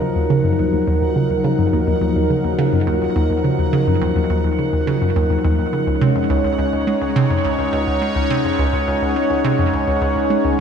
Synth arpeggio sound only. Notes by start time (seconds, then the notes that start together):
0.01 C#3
0.16 D#2
0.30 C#3
0.44 F#2
0.59 D#2
0.73 D#2
0.87 D#2
1.02 D#2
1.16 C#3
1.30 D#2
1.44 C#3
1.59 F#2
1.73 D#2
1.87 D#2
2.01 D#2
2.16 D#2
2.30 C#3
2.44 D#2
2.59 C#3
2.73 F#2
2.87 D#2
3.02 D#2
3.16 D#2
3.30 D#2
3.44 C#3
3.59 D#2
3.73 C#3
3.87 F#2
4.02 D#2
4.16 D#2
4.30 D#2
4.44 D#2
4.59 C#3
4.73 D#2
4.87 C#3
5.02 F#2
5.16 D#2
5.30 D#2
5.44 D#2
5.59 D#2
5.73 C#3
5.87 C#2
6.01 C3
6.16 F2
6.30 C#2
6.44 C#2
6.58 C#2
6.73 C#2
6.87 G#3
7.01 C#2
7.16 C3
7.30 F2
7.45 C#2
7.58 C#2
7.73 C#2
7.87 C#2
8.02 G#3
8.16 C#2
8.30 C3
8.45 F2
8.59 C#2
8.73 C#2
8.88 C#2
9.02 C#2
9.16 G#3
9.30 C#2
9.45 C3
9.59 F2
9.73 C#2
9.87 C#2
10.02 C#2
10.16 C#2
10.30 G#3
10.45 C#2